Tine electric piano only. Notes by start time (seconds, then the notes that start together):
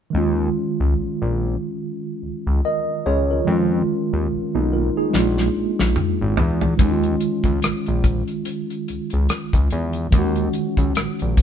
0.10 D#3 G#3
0.16 C#4 F4
2.65 A#4 D#5
3.06 G#4 C#5
3.31 F4 A#4
3.45 D#3 G#3
3.50 C#4 F4
4.55 A#3 D#4
4.73 F4 A#4
4.97 D#4 G#4
5.10 G#3 A#3
5.15 C#4 F4
5.22 D4
6.77 D#3 G#3
6.82 C#4 D#4
6.91 F4
10.11 D#3 G#3
10.16 C#4 F#4